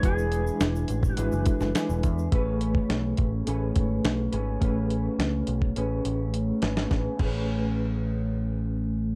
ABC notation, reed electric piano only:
X:1
M:4/4
L:1/16
Q:1/4=105
K:A
V:1 name="Reed electric piano"
[G,DEB]6 z2 [G,DEB]2 [G,DEAB]4- [G,DEAB] z | [A,CGB]6 z2 [A,CGAB]6 z2 | [A,CGB]6 z2 [A,CGB]6 z2 | [A,CGB]2 [CGB]12- [CGB]2 |]